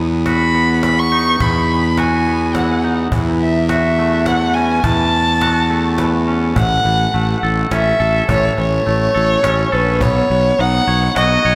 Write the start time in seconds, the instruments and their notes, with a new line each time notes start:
Already playing: clean electric guitar E2 B3, fingered electric bass E2
0.26 clean electric guitar F#4, violin B5, cajon slap
0.55 clean electric guitar B3
0.83 clean electric guitar E3, violin B5, cajon slap
0.99 violin C#6
1.12 clean electric guitar D#4
1.40 fingered electric bass E2, clean electric guitar E2, violin B5, cajon bass
1.98 clean electric guitar F#4, violin G#5, cajon slap
2.27 clean electric guitar B3
2.55 clean electric guitar E3, violin F#5, cajon slap
2.84 clean electric guitar D#4
3.12 fingered electric bass E2, clean electric guitar E3, cajon bass
3.41 violin E5
3.69 clean electric guitar F#4, violin E5, cajon slap
3.99 clean electric guitar A3
4.26 clean electric guitar E3, violin F#5, cajon slap
4.54 clean electric guitar C#4, violin G#5
4.82 fingered electric bass E2, clean electric guitar E3, violin A5, cajon bass
5.41 clean electric guitar F#4, cajon slap
5.70 clean electric guitar A3
5.98 clean electric guitar E3, cajon slap
6.28 clean electric guitar C#4
6.56 fingered electric bass A1, clean electric guitar A2, violin F#5, cajon bass
6.85 fingered electric bass A1, clean electric guitar E3
7.13 fingered electric bass A1, clean electric guitar A3, cajon slap
7.43 fingered electric bass A1, clean electric guitar A4
7.71 fingered electric bass A1, clean electric guitar C#4, violin E5, cajon slap
8.00 fingered electric bass A1, clean electric guitar A4, cajon slap
8.29 fingered electric bass A1, clean electric guitar A2, violin C#5, cajon bass
8.58 fingered electric bass A1, clean electric guitar E3, violin C#5
8.86 fingered electric bass A1, clean electric guitar A3, cajon slap
9.15 fingered electric bass A1, clean electric guitar A4
9.43 fingered electric bass A1, clean electric guitar C#4, cajon slap
9.72 fingered electric bass A#1, clean electric guitar A4, violin B4
10.01 fingered electric bass B1, clean electric guitar B3, violin C#5, cajon bass
10.30 fingered electric bass B1, clean electric guitar B3
10.59 fingered electric bass B1, clean electric guitar D#4, violin F#5, cajon slap
10.87 fingered electric bass B1, clean electric guitar C#5
11.16 fingered electric bass B1, clean electric guitar F#4, violin D#5, cajon slap
11.45 fingered electric bass B1, clean electric guitar C#5, cajon slap